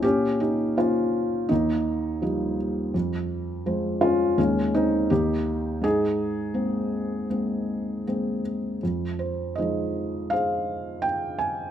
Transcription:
<<
  \new Staff \with { instrumentName = "Felt piano" } { \time 4/4 \key aes \major \tempo 4 = 82 << { g'8 g'8 f'4 ees'4. r8 | r4. f'8 des'8 ees'8 g'4 | aes'2.~ aes'8 r8 | \key f \minor r8 c''8 ees''4 f''4 g''8 aes''8 | } \\ { des'8 ees'8 r4 bes4. r8 | r4. des'8 aes8 c'8 ees'4 | ees'2.~ ees'8 r8 | r4 <aes' c''>4 <aes' c''>2 | } >> }
  \new Staff \with { instrumentName = "Felt piano" } { \clef bass \time 4/4 \key aes \major bes,4 <bes des' c''>4 ees,4 <f g ees'>4 | f,4 <f aes c''>4 ees,4 ees,4 | aes,4 <aes bes c'>4 <aes bes c'>4 <aes bes c'>4 | \key f \minor f,4 <f aes ees'>2. | }
>>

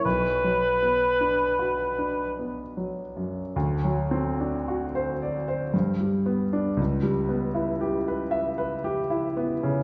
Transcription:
<<
  \new Staff \with { instrumentName = "Cor anglais" } { \time 3/4 \key d \major \tempo 4 = 56 b'2 r4 | r2. | r2. | }
  \new Staff \with { instrumentName = "Grand piano" } { \time 3/4 \key d \major \tuplet 3/2 { b,,8 fis8 b8 d'8 fis'8 d'8 b8 fis8 fis,8 } | d,16 fis16 c'16 d'16 fis'16 c''16 d''16 c''16 g,16 g16 b16 d'16 | cis,16 g16 b16 e'16 g'16 b'16 e''16 b'16 g'16 e'16 b16 cis16 | }
>>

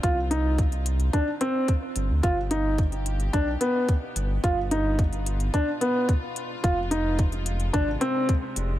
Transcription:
<<
  \new Staff \with { instrumentName = "Felt piano" } { \time 4/4 \key g \phrygian \tempo 4 = 109 f'8 ees'4 r8 d'8 c'4 r8 | f'8 ees'4 r8 d'8 b4 r8 | f'8 ees'4 r8 d'8 b4 r8 | f'8 ees'4 r8 d'8 c'4 r8 | }
  \new Staff \with { instrumentName = "String section" } { \time 4/4 \key g \phrygian << { f'1 | g'1 | f'1~ | f'1 | } \\ { <ees c'>1 | <b, b>1~ | <b, b>1 | <c aes>1 | } >> }
  \new Staff \with { instrumentName = "Analog synth bass" } { \clef bass \time 4/4 \key g \phrygian c,2 r4. g,,16 d,16 | g,,2 b,,8 r4 g,,8 | g,,2 r2 | f,,2 aes,,8 r4 f,,8 | }
  \new DrumStaff \with { instrumentName = "Drums" } \drummode { \time 4/4 <hh bd>8 hh8 <hh bd>16 hh16 hh16 hh16 <hh bd>8 hh8 <hh bd>8 hh8 | <hh bd>8 hh8 <hh bd>16 hh16 hh16 hh16 <hh bd>8 hh8 <hh bd>8 hh8 | <hh bd>8 hh8 <hh bd>16 hh16 hh16 hh16 <hh bd>8 hh8 <hh bd>8 hh8 | <hh bd>8 hh8 <hh bd>16 hh16 hh16 hh16 <hh bd>8 hh8 <hh bd>8 hh8 | }
>>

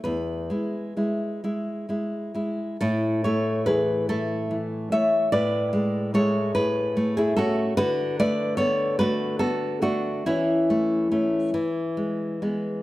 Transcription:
\new Staff \with { instrumentName = "Nylon-string guitar" } { \time 6/8 \key a \major \tempo 4. = 47 << { b'2~ b'8 r8 | <e' a'>8 <a' cis''>8 <gis' b'>8 <e' a'>4 <cis'' e''>8 | <b' d''>4 <a' cis''>8 <gis' b'>8. <e' gis'>16 <fis' a'>8 | <fis' b'>8 <b' d''>8 <a' cis''>8 <fis' b'>8 <fis' a'>8 <d' fis'>8 |
<cis' e'>2~ <cis' e'>8 r8 | } \\ { e,8 <gis e'>8 <gis e'>8 <gis e'>8 <gis e'>8 <gis e'>8 | a,8 a8 e8 a8 e8 a8 | a,8 gis8 <gis e'>8 a,8 a8 <a cis'>8 | d8 a8 b8 a8 b8 a8 |
e8 a8 <a cis'>8 e8 gis8 <gis b>8 | } >> }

